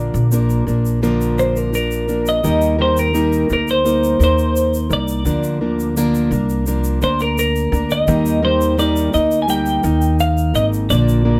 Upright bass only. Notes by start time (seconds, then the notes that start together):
Already playing: A#1
0.14 A#1
0.67 A#1
2.44 D#2
3.50 D2
4.20 D#2
4.90 C2
5.25 D2
6.31 C2
7.02 D2
7.72 D2
8.08 D#2
9.14 D2
9.84 D#2
10.54 G#1
10.90 A#1